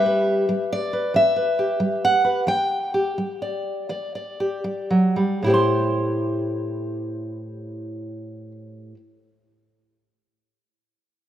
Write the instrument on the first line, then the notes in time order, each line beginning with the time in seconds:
steel-string acoustic guitar
Already playing: E3 G3 G4 E5
0.06 B4
0.49 G3
0.73 D5
0.93 B4
1.14 E3 E5
1.36 B4
1.59 G4
1.80 G3
2.05 F#5
2.25 B4
2.47 E3 G5
2.94 G4
3.18 G3
3.42 D5
3.89 E3 D5
4.15 D5
4.40 G4
4.64 G3
4.90 F#3
5.16 G3
5.42 A2 E4 G4
5.48 C5 G5
5.54 C6